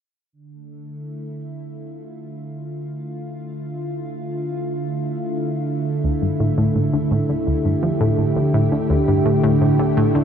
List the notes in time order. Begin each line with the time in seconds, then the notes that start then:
0.33 D3
0.53 A3
0.91 E4
1.59 F4
6.04 D2
6.22 G2
6.40 A2
6.58 A2
6.76 A2
6.93 D3
7.11 A2
7.29 D3
7.41 G4
7.47 D2
7.65 G2
7.83 F3
8.01 A2
8.18 A2
8.36 D3
8.54 A2
8.72 D3
8.90 D2
9.08 G2
9.26 A2
9.44 A2
9.61 A2
9.79 D3
9.97 A2
10.15 D3